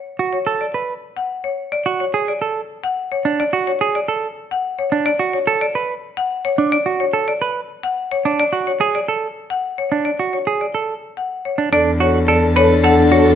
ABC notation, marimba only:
X:1
M:3/4
L:1/16
Q:1/4=108
K:Dlyd
V:1 name="Marimba"
z2 c z d z3 f z c z | d z c z d z3 f z c z | d z c z d z3 f z c z | d z c z d z3 f z c z |
d z c z d z3 f z c z | d z c z d z3 f z c z | d z c z d z3 f z c z | d z c z d z c z f z c z |]